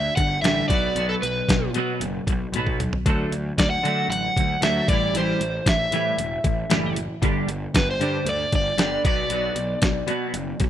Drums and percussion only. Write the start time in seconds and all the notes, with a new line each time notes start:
0.17 kick, closed hi-hat
0.44 snare, closed hi-hat
0.70 kick, closed hi-hat
0.96 closed hi-hat
1.23 closed hi-hat
1.49 kick, snare, closed hi-hat
1.74 closed hi-hat
2.01 closed hi-hat
2.27 kick, closed hi-hat
2.54 closed hi-hat, high tom
2.67 kick
2.80 closed hi-hat, mid tom
2.93 floor tom
3.06 kick, closed hi-hat
3.32 closed hi-hat
3.58 kick, snare, closed hi-hat
3.85 closed hi-hat
4.12 closed hi-hat
4.36 kick, closed hi-hat
4.62 snare, closed hi-hat
4.88 kick, closed hi-hat
5.15 closed hi-hat
5.41 closed hi-hat
5.66 kick, snare, closed hi-hat
5.92 closed hi-hat
6.18 closed hi-hat
6.44 kick, closed hi-hat
6.70 snare, closed hi-hat
6.96 closed hi-hat
7.22 kick, closed hi-hat
7.49 closed hi-hat
7.74 kick, snare, closed hi-hat
8.01 closed hi-hat
8.26 closed hi-hat
8.52 kick, closed hi-hat
8.78 snare, closed hi-hat
9.05 kick, closed hi-hat
9.30 closed hi-hat
9.56 closed hi-hat
9.82 kick, snare, closed hi-hat
10.08 closed hi-hat
10.34 closed hi-hat
10.60 kick, snare, closed hi-hat